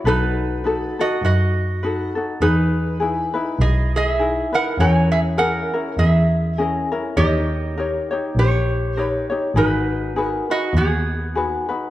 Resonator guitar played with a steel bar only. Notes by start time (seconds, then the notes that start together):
0.07 D#4 B4
1.01 F#4 D#5
1.25 F#4 D#5
2.42 D#4 B4
3.61 G#4 D#5
3.96 G#4 E5
4.54 A#4 F#5
4.80 C#5 G#5
5.12 G#4 E5
5.38 A#4 F#5
5.99 G#4 E5
6.59 D#5
7.17 G4 D#5
8.39 G4 C#5
9.02 B4
9.57 D#4 B4
10.22 A#4
10.51 F#4 D#5
10.77 B3 G#4